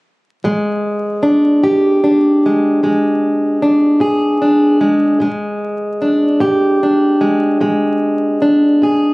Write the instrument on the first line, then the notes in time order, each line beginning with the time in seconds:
steel-string acoustic guitar
0.44 A#2 G#3
1.23 D4
1.63 A#2 G4
2.04 D4
2.46 G#3
2.83 A#2 G#3
3.62 D4
4.00 A#2 G#4
4.42 D4
4.81 G#3
5.20 A#2 G#3
6.02 D4
6.40 A#2 G4
6.83 D4
7.21 G#3
7.61 A#2 G#3
8.42 D4
8.82 A#2 G#4